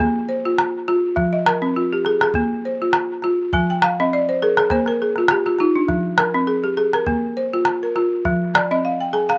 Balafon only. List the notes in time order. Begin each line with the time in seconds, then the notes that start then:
Already playing: G#4
0.00 A#3
0.29 C5
0.45 F4
0.88 F4
1.16 F3
1.33 D#5
1.47 A#4
1.62 C4
1.76 F4
1.93 G4
2.06 G#4
2.23 G#4
2.35 A#3
2.65 C5
2.82 F4
3.24 F4
3.53 F3 G#5
3.70 G5
3.83 F5
4.00 C4 D#5
4.13 D5
4.29 C5
4.42 G#4 A#4
4.58 G#4
4.71 A#3 C5
4.88 A#4
5.02 G#4
5.18 F4
5.31 G4
5.46 F4
5.60 D#4 F4
5.76 D4
5.88 F3
6.18 A#4
6.34 C4
6.47 G#4
6.64 G4
6.77 G#4
6.94 A#4
7.07 A#3
7.37 C5
7.53 F4
7.83 A#4
7.96 F4
8.25 F3
8.55 D5
8.71 C4 D#5
8.85 F5
9.01 G5
9.13 G#4 G#5
9.29 F5